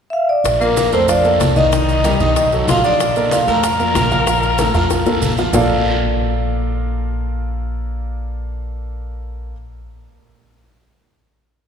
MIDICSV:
0, 0, Header, 1, 6, 480
1, 0, Start_track
1, 0, Key_signature, -2, "major"
1, 0, Tempo, 318302
1, 679, Time_signature, 4, 2, 24, 8
1, 7399, Tempo, 315126
1, 17715, End_track
2, 0, Start_track
2, 0, Title_t, "Vibraphone"
2, 0, Program_c, 0, 11
2, 155, Note_on_c, 0, 76, 72
2, 200, Note_on_c, 0, 77, 80
2, 207, Note_off_c, 0, 76, 0
2, 422, Note_off_c, 0, 77, 0
2, 441, Note_on_c, 0, 74, 83
2, 928, Note_on_c, 0, 70, 81
2, 934, Note_off_c, 0, 74, 0
2, 1370, Note_off_c, 0, 70, 0
2, 1406, Note_on_c, 0, 72, 71
2, 1650, Note_off_c, 0, 72, 0
2, 1654, Note_on_c, 0, 74, 78
2, 2369, Note_on_c, 0, 75, 81
2, 2389, Note_off_c, 0, 74, 0
2, 3747, Note_off_c, 0, 75, 0
2, 4073, Note_on_c, 0, 77, 91
2, 4305, Note_off_c, 0, 77, 0
2, 4314, Note_on_c, 0, 74, 94
2, 5023, Note_on_c, 0, 77, 87
2, 5041, Note_off_c, 0, 74, 0
2, 5261, Note_off_c, 0, 77, 0
2, 5270, Note_on_c, 0, 82, 88
2, 7834, Note_off_c, 0, 82, 0
2, 17715, End_track
3, 0, Start_track
3, 0, Title_t, "Grand piano"
3, 0, Program_c, 1, 0
3, 920, Note_on_c, 1, 58, 64
3, 923, Note_on_c, 1, 65, 70
3, 928, Note_on_c, 1, 70, 67
3, 1313, Note_off_c, 1, 58, 0
3, 1315, Note_off_c, 1, 65, 0
3, 1318, Note_off_c, 1, 70, 0
3, 1397, Note_on_c, 1, 57, 69
3, 1398, Note_on_c, 1, 69, 72
3, 1408, Note_on_c, 1, 70, 78
3, 1595, Note_off_c, 1, 57, 0
3, 1596, Note_off_c, 1, 69, 0
3, 1601, Note_off_c, 1, 70, 0
3, 1633, Note_on_c, 1, 53, 77
3, 1641, Note_on_c, 1, 65, 80
3, 1642, Note_on_c, 1, 77, 75
3, 1832, Note_off_c, 1, 53, 0
3, 1837, Note_off_c, 1, 65, 0
3, 1838, Note_off_c, 1, 77, 0
3, 1877, Note_on_c, 1, 58, 64
3, 1879, Note_on_c, 1, 69, 71
3, 1883, Note_on_c, 1, 70, 67
3, 2272, Note_off_c, 1, 58, 0
3, 2273, Note_off_c, 1, 69, 0
3, 2275, Note_off_c, 1, 70, 0
3, 2353, Note_on_c, 1, 51, 79
3, 2359, Note_on_c, 1, 63, 73
3, 2365, Note_on_c, 1, 75, 76
3, 2553, Note_off_c, 1, 51, 0
3, 2557, Note_off_c, 1, 63, 0
3, 2560, Note_off_c, 1, 75, 0
3, 2604, Note_on_c, 1, 51, 78
3, 2608, Note_on_c, 1, 63, 76
3, 2612, Note_on_c, 1, 75, 78
3, 2997, Note_off_c, 1, 51, 0
3, 2999, Note_off_c, 1, 63, 0
3, 3001, Note_off_c, 1, 75, 0
3, 3085, Note_on_c, 1, 55, 71
3, 3085, Note_on_c, 1, 67, 74
3, 3092, Note_on_c, 1, 70, 70
3, 3281, Note_off_c, 1, 55, 0
3, 3281, Note_off_c, 1, 67, 0
3, 3285, Note_off_c, 1, 70, 0
3, 3328, Note_on_c, 1, 51, 81
3, 3332, Note_on_c, 1, 63, 92
3, 3334, Note_on_c, 1, 75, 92
3, 3720, Note_off_c, 1, 51, 0
3, 3722, Note_off_c, 1, 63, 0
3, 3724, Note_off_c, 1, 75, 0
3, 3808, Note_on_c, 1, 54, 71
3, 3811, Note_on_c, 1, 66, 66
3, 3823, Note_on_c, 1, 69, 66
3, 4200, Note_off_c, 1, 54, 0
3, 4202, Note_off_c, 1, 66, 0
3, 4209, Note_off_c, 1, 69, 0
3, 4283, Note_on_c, 1, 53, 75
3, 4288, Note_on_c, 1, 77, 71
3, 4289, Note_on_c, 1, 65, 78
3, 4678, Note_off_c, 1, 53, 0
3, 4680, Note_off_c, 1, 77, 0
3, 4681, Note_off_c, 1, 65, 0
3, 4771, Note_on_c, 1, 58, 66
3, 4771, Note_on_c, 1, 69, 66
3, 4778, Note_on_c, 1, 70, 75
3, 5162, Note_off_c, 1, 58, 0
3, 5162, Note_off_c, 1, 69, 0
3, 5166, Note_off_c, 1, 70, 0
3, 5241, Note_on_c, 1, 57, 80
3, 5248, Note_on_c, 1, 69, 77
3, 5251, Note_on_c, 1, 70, 70
3, 5439, Note_off_c, 1, 57, 0
3, 5443, Note_off_c, 1, 69, 0
3, 5445, Note_off_c, 1, 70, 0
3, 5477, Note_on_c, 1, 53, 69
3, 5480, Note_on_c, 1, 77, 77
3, 5482, Note_on_c, 1, 65, 78
3, 5677, Note_off_c, 1, 53, 0
3, 5678, Note_off_c, 1, 77, 0
3, 5680, Note_off_c, 1, 65, 0
3, 5720, Note_on_c, 1, 58, 64
3, 5727, Note_on_c, 1, 65, 68
3, 5730, Note_on_c, 1, 70, 68
3, 6115, Note_off_c, 1, 58, 0
3, 6119, Note_off_c, 1, 65, 0
3, 6121, Note_off_c, 1, 70, 0
3, 6197, Note_on_c, 1, 53, 86
3, 6201, Note_on_c, 1, 65, 74
3, 6207, Note_on_c, 1, 77, 77
3, 6396, Note_off_c, 1, 53, 0
3, 6398, Note_off_c, 1, 65, 0
3, 6402, Note_off_c, 1, 77, 0
3, 6428, Note_on_c, 1, 53, 83
3, 6433, Note_on_c, 1, 65, 77
3, 6444, Note_on_c, 1, 77, 81
3, 6827, Note_off_c, 1, 53, 0
3, 6829, Note_off_c, 1, 65, 0
3, 6836, Note_off_c, 1, 77, 0
3, 6918, Note_on_c, 1, 57, 67
3, 6922, Note_on_c, 1, 69, 67
3, 6923, Note_on_c, 1, 70, 68
3, 7116, Note_off_c, 1, 57, 0
3, 7118, Note_off_c, 1, 69, 0
3, 7119, Note_off_c, 1, 70, 0
3, 7153, Note_on_c, 1, 53, 92
3, 7157, Note_on_c, 1, 65, 80
3, 7161, Note_on_c, 1, 77, 88
3, 7549, Note_off_c, 1, 53, 0
3, 7551, Note_off_c, 1, 65, 0
3, 7554, Note_off_c, 1, 77, 0
3, 7636, Note_on_c, 1, 69, 67
3, 7638, Note_on_c, 1, 58, 70
3, 7647, Note_on_c, 1, 70, 66
3, 8033, Note_off_c, 1, 69, 0
3, 8034, Note_off_c, 1, 58, 0
3, 8040, Note_off_c, 1, 70, 0
3, 8122, Note_on_c, 1, 53, 77
3, 8128, Note_on_c, 1, 65, 76
3, 8132, Note_on_c, 1, 77, 76
3, 8320, Note_off_c, 1, 53, 0
3, 8323, Note_off_c, 1, 65, 0
3, 8325, Note_off_c, 1, 77, 0
3, 8354, Note_on_c, 1, 58, 90
3, 8359, Note_on_c, 1, 65, 83
3, 8362, Note_on_c, 1, 69, 83
3, 8366, Note_on_c, 1, 70, 82
3, 8367, Note_on_c, 1, 74, 85
3, 8372, Note_on_c, 1, 77, 87
3, 14425, Note_off_c, 1, 58, 0
3, 14427, Note_off_c, 1, 65, 0
3, 14428, Note_off_c, 1, 69, 0
3, 14430, Note_off_c, 1, 70, 0
3, 14431, Note_off_c, 1, 74, 0
3, 14434, Note_off_c, 1, 77, 0
3, 17715, End_track
4, 0, Start_track
4, 0, Title_t, "Tenor saxophone"
4, 0, Program_c, 2, 66
4, 911, Note_on_c, 2, 58, 69
4, 1361, Note_off_c, 2, 58, 0
4, 1398, Note_on_c, 2, 60, 75
4, 1622, Note_off_c, 2, 60, 0
4, 1644, Note_on_c, 2, 62, 70
4, 2312, Note_off_c, 2, 62, 0
4, 2357, Note_on_c, 2, 63, 80
4, 3741, Note_off_c, 2, 63, 0
4, 4054, Note_on_c, 2, 65, 89
4, 4272, Note_off_c, 2, 65, 0
4, 4283, Note_on_c, 2, 62, 80
4, 4953, Note_off_c, 2, 62, 0
4, 5009, Note_on_c, 2, 65, 69
4, 5230, Note_off_c, 2, 65, 0
4, 5249, Note_on_c, 2, 70, 92
4, 7823, Note_off_c, 2, 70, 0
4, 17715, End_track
5, 0, Start_track
5, 0, Title_t, "Upright bass"
5, 0, Program_c, 3, 32
5, 666, Note_on_c, 3, 34, 88
5, 1342, Note_off_c, 3, 34, 0
5, 1391, Note_on_c, 3, 41, 77
5, 2065, Note_off_c, 3, 41, 0
5, 2109, Note_on_c, 3, 36, 84
5, 3232, Note_off_c, 3, 36, 0
5, 3321, Note_on_c, 3, 35, 84
5, 3992, Note_off_c, 3, 35, 0
5, 4042, Note_on_c, 3, 34, 94
5, 5159, Note_off_c, 3, 34, 0
5, 5239, Note_on_c, 3, 41, 86
5, 5911, Note_off_c, 3, 41, 0
5, 5955, Note_on_c, 3, 34, 90
5, 7072, Note_off_c, 3, 34, 0
5, 7151, Note_on_c, 3, 41, 79
5, 7826, Note_off_c, 3, 41, 0
5, 7878, Note_on_c, 3, 34, 91
5, 8305, Note_off_c, 3, 34, 0
5, 8353, Note_on_c, 3, 34, 90
5, 14424, Note_off_c, 3, 34, 0
5, 17715, End_track
6, 0, Start_track
6, 0, Title_t, "Drums"
6, 673, Note_on_c, 9, 74, 66
6, 675, Note_on_c, 9, 70, 74
6, 679, Note_on_c, 9, 63, 25
6, 685, Note_on_c, 9, 60, 75
6, 824, Note_off_c, 9, 74, 0
6, 825, Note_off_c, 9, 70, 0
6, 830, Note_off_c, 9, 63, 0
6, 836, Note_off_c, 9, 60, 0
6, 915, Note_on_c, 9, 63, 32
6, 921, Note_on_c, 9, 70, 30
6, 1066, Note_off_c, 9, 63, 0
6, 1071, Note_off_c, 9, 70, 0
6, 1157, Note_on_c, 9, 70, 67
6, 1160, Note_on_c, 9, 63, 88
6, 1165, Note_on_c, 9, 73, 69
6, 1167, Note_on_c, 9, 60, 59
6, 1308, Note_off_c, 9, 70, 0
6, 1311, Note_off_c, 9, 63, 0
6, 1316, Note_off_c, 9, 73, 0
6, 1318, Note_off_c, 9, 60, 0
6, 1395, Note_on_c, 9, 70, 30
6, 1401, Note_on_c, 9, 63, 32
6, 1402, Note_on_c, 9, 73, 71
6, 1546, Note_off_c, 9, 70, 0
6, 1552, Note_off_c, 9, 63, 0
6, 1553, Note_off_c, 9, 73, 0
6, 1633, Note_on_c, 9, 70, 73
6, 1637, Note_on_c, 9, 63, 35
6, 1640, Note_on_c, 9, 74, 68
6, 1647, Note_on_c, 9, 60, 65
6, 1784, Note_off_c, 9, 70, 0
6, 1788, Note_off_c, 9, 63, 0
6, 1791, Note_off_c, 9, 74, 0
6, 1797, Note_off_c, 9, 60, 0
6, 1875, Note_on_c, 9, 70, 30
6, 1880, Note_on_c, 9, 63, 30
6, 2026, Note_off_c, 9, 70, 0
6, 2031, Note_off_c, 9, 63, 0
6, 2112, Note_on_c, 9, 63, 84
6, 2113, Note_on_c, 9, 70, 65
6, 2119, Note_on_c, 9, 73, 65
6, 2125, Note_on_c, 9, 60, 68
6, 2125, Note_on_c, 9, 61, 80
6, 2263, Note_off_c, 9, 63, 0
6, 2264, Note_off_c, 9, 70, 0
6, 2269, Note_off_c, 9, 73, 0
6, 2275, Note_off_c, 9, 60, 0
6, 2275, Note_off_c, 9, 61, 0
6, 2351, Note_on_c, 9, 63, 77
6, 2354, Note_on_c, 9, 70, 27
6, 2365, Note_on_c, 9, 73, 71
6, 2502, Note_off_c, 9, 63, 0
6, 2504, Note_off_c, 9, 70, 0
6, 2516, Note_off_c, 9, 73, 0
6, 2598, Note_on_c, 9, 70, 70
6, 2604, Note_on_c, 9, 63, 29
6, 2606, Note_on_c, 9, 60, 74
6, 2609, Note_on_c, 9, 74, 73
6, 2749, Note_off_c, 9, 70, 0
6, 2755, Note_off_c, 9, 63, 0
6, 2757, Note_off_c, 9, 60, 0
6, 2759, Note_off_c, 9, 74, 0
6, 2841, Note_on_c, 9, 63, 37
6, 2847, Note_on_c, 9, 70, 29
6, 2992, Note_off_c, 9, 63, 0
6, 2997, Note_off_c, 9, 70, 0
6, 3080, Note_on_c, 9, 70, 70
6, 3081, Note_on_c, 9, 63, 89
6, 3086, Note_on_c, 9, 73, 67
6, 3089, Note_on_c, 9, 60, 64
6, 3230, Note_off_c, 9, 70, 0
6, 3232, Note_off_c, 9, 63, 0
6, 3236, Note_off_c, 9, 73, 0
6, 3239, Note_off_c, 9, 60, 0
6, 3318, Note_on_c, 9, 70, 30
6, 3322, Note_on_c, 9, 73, 70
6, 3326, Note_on_c, 9, 60, 33
6, 3326, Note_on_c, 9, 63, 35
6, 3469, Note_off_c, 9, 70, 0
6, 3473, Note_off_c, 9, 73, 0
6, 3477, Note_off_c, 9, 60, 0
6, 3477, Note_off_c, 9, 63, 0
6, 3560, Note_on_c, 9, 63, 36
6, 3561, Note_on_c, 9, 70, 70
6, 3564, Note_on_c, 9, 60, 65
6, 3567, Note_on_c, 9, 74, 68
6, 3710, Note_off_c, 9, 63, 0
6, 3711, Note_off_c, 9, 70, 0
6, 3715, Note_off_c, 9, 60, 0
6, 3718, Note_off_c, 9, 74, 0
6, 3799, Note_on_c, 9, 70, 29
6, 3801, Note_on_c, 9, 63, 31
6, 3812, Note_on_c, 9, 60, 35
6, 3950, Note_off_c, 9, 70, 0
6, 3952, Note_off_c, 9, 63, 0
6, 3963, Note_off_c, 9, 60, 0
6, 4036, Note_on_c, 9, 63, 82
6, 4043, Note_on_c, 9, 70, 65
6, 4050, Note_on_c, 9, 73, 72
6, 4056, Note_on_c, 9, 60, 66
6, 4056, Note_on_c, 9, 61, 90
6, 4187, Note_off_c, 9, 63, 0
6, 4194, Note_off_c, 9, 70, 0
6, 4201, Note_off_c, 9, 73, 0
6, 4207, Note_off_c, 9, 60, 0
6, 4207, Note_off_c, 9, 61, 0
6, 4283, Note_on_c, 9, 70, 30
6, 4289, Note_on_c, 9, 60, 34
6, 4293, Note_on_c, 9, 73, 65
6, 4434, Note_off_c, 9, 70, 0
6, 4440, Note_off_c, 9, 60, 0
6, 4444, Note_off_c, 9, 73, 0
6, 4518, Note_on_c, 9, 63, 28
6, 4526, Note_on_c, 9, 70, 71
6, 4531, Note_on_c, 9, 60, 69
6, 4532, Note_on_c, 9, 74, 62
6, 4669, Note_off_c, 9, 63, 0
6, 4677, Note_off_c, 9, 70, 0
6, 4682, Note_off_c, 9, 60, 0
6, 4682, Note_off_c, 9, 74, 0
6, 4763, Note_on_c, 9, 63, 33
6, 4764, Note_on_c, 9, 70, 30
6, 4914, Note_off_c, 9, 63, 0
6, 4915, Note_off_c, 9, 70, 0
6, 4997, Note_on_c, 9, 63, 90
6, 5002, Note_on_c, 9, 70, 71
6, 5010, Note_on_c, 9, 60, 61
6, 5010, Note_on_c, 9, 73, 67
6, 5148, Note_off_c, 9, 63, 0
6, 5153, Note_off_c, 9, 70, 0
6, 5160, Note_off_c, 9, 60, 0
6, 5161, Note_off_c, 9, 73, 0
6, 5242, Note_on_c, 9, 70, 30
6, 5245, Note_on_c, 9, 63, 37
6, 5252, Note_on_c, 9, 73, 74
6, 5393, Note_off_c, 9, 70, 0
6, 5396, Note_off_c, 9, 63, 0
6, 5403, Note_off_c, 9, 73, 0
6, 5480, Note_on_c, 9, 70, 72
6, 5483, Note_on_c, 9, 60, 72
6, 5488, Note_on_c, 9, 63, 33
6, 5493, Note_on_c, 9, 74, 68
6, 5631, Note_off_c, 9, 70, 0
6, 5634, Note_off_c, 9, 60, 0
6, 5639, Note_off_c, 9, 63, 0
6, 5644, Note_off_c, 9, 74, 0
6, 5723, Note_on_c, 9, 70, 31
6, 5729, Note_on_c, 9, 63, 30
6, 5874, Note_off_c, 9, 70, 0
6, 5880, Note_off_c, 9, 63, 0
6, 5962, Note_on_c, 9, 60, 68
6, 5962, Note_on_c, 9, 61, 83
6, 5965, Note_on_c, 9, 73, 72
6, 5966, Note_on_c, 9, 63, 82
6, 5966, Note_on_c, 9, 70, 76
6, 6113, Note_off_c, 9, 60, 0
6, 6113, Note_off_c, 9, 61, 0
6, 6116, Note_off_c, 9, 73, 0
6, 6117, Note_off_c, 9, 63, 0
6, 6117, Note_off_c, 9, 70, 0
6, 6202, Note_on_c, 9, 70, 29
6, 6206, Note_on_c, 9, 73, 68
6, 6213, Note_on_c, 9, 63, 77
6, 6353, Note_off_c, 9, 70, 0
6, 6357, Note_off_c, 9, 73, 0
6, 6364, Note_off_c, 9, 63, 0
6, 6440, Note_on_c, 9, 70, 63
6, 6441, Note_on_c, 9, 60, 66
6, 6443, Note_on_c, 9, 74, 64
6, 6449, Note_on_c, 9, 63, 29
6, 6591, Note_off_c, 9, 70, 0
6, 6592, Note_off_c, 9, 60, 0
6, 6594, Note_off_c, 9, 74, 0
6, 6600, Note_off_c, 9, 63, 0
6, 6676, Note_on_c, 9, 70, 29
6, 6683, Note_on_c, 9, 63, 34
6, 6827, Note_off_c, 9, 70, 0
6, 6834, Note_off_c, 9, 63, 0
6, 6911, Note_on_c, 9, 70, 73
6, 6916, Note_on_c, 9, 63, 90
6, 6918, Note_on_c, 9, 60, 58
6, 6918, Note_on_c, 9, 73, 67
6, 7062, Note_off_c, 9, 70, 0
6, 7066, Note_off_c, 9, 63, 0
6, 7069, Note_off_c, 9, 60, 0
6, 7069, Note_off_c, 9, 73, 0
6, 7150, Note_on_c, 9, 60, 33
6, 7151, Note_on_c, 9, 70, 30
6, 7153, Note_on_c, 9, 63, 36
6, 7166, Note_on_c, 9, 73, 75
6, 7301, Note_off_c, 9, 60, 0
6, 7302, Note_off_c, 9, 70, 0
6, 7303, Note_off_c, 9, 63, 0
6, 7317, Note_off_c, 9, 73, 0
6, 7393, Note_on_c, 9, 70, 68
6, 7394, Note_on_c, 9, 63, 34
6, 7397, Note_on_c, 9, 60, 92
6, 7401, Note_on_c, 9, 74, 76
6, 7545, Note_off_c, 9, 70, 0
6, 7546, Note_off_c, 9, 63, 0
6, 7549, Note_off_c, 9, 60, 0
6, 7553, Note_off_c, 9, 74, 0
6, 7633, Note_on_c, 9, 70, 31
6, 7637, Note_on_c, 9, 63, 32
6, 7640, Note_on_c, 9, 61, 96
6, 7786, Note_off_c, 9, 70, 0
6, 7790, Note_off_c, 9, 63, 0
6, 7793, Note_off_c, 9, 61, 0
6, 7872, Note_on_c, 9, 63, 82
6, 7875, Note_on_c, 9, 70, 69
6, 7888, Note_on_c, 9, 73, 74
6, 8024, Note_off_c, 9, 63, 0
6, 8027, Note_off_c, 9, 70, 0
6, 8041, Note_off_c, 9, 73, 0
6, 8114, Note_on_c, 9, 70, 27
6, 8122, Note_on_c, 9, 73, 66
6, 8130, Note_on_c, 9, 61, 88
6, 8267, Note_off_c, 9, 70, 0
6, 8274, Note_off_c, 9, 73, 0
6, 8282, Note_off_c, 9, 61, 0
6, 8353, Note_on_c, 9, 64, 88
6, 8353, Note_on_c, 9, 70, 97
6, 8365, Note_on_c, 9, 74, 94
6, 8369, Note_on_c, 9, 61, 106
6, 8505, Note_off_c, 9, 64, 0
6, 8505, Note_off_c, 9, 70, 0
6, 8518, Note_off_c, 9, 74, 0
6, 8522, Note_off_c, 9, 61, 0
6, 17715, End_track
0, 0, End_of_file